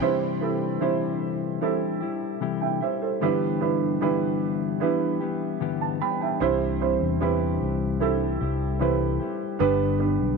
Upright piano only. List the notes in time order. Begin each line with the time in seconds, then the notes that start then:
0.01 G2 C4 E4 G4 C5
0.41 C4 E4 G4 A4
0.81 C4 E4 G4 C5
1.61 C4 E4 G4 A4
2.61 E5 G5
2.82 C5 E5
3.02 A4 C5
3.22 G2 D3 D4 E4 G4 B4
3.61 D4 E4 G4 B4
4.01 D4 E4 G4 B4
4.80 D4 E4 G4 B4
5.81 A5
6.02 G5 B5
6.22 E5 G5
6.40 G2 C4 E4 G4 C5
6.81 C4 E4 G4 C5
7.21 C4 E4 G4 B4
8.00 C4 E4 G4 A4
8.79 C4 E4 G4 B4
9.59 G2 D3 B3 D4 G4 B4
9.99 B3 D4 G4 B4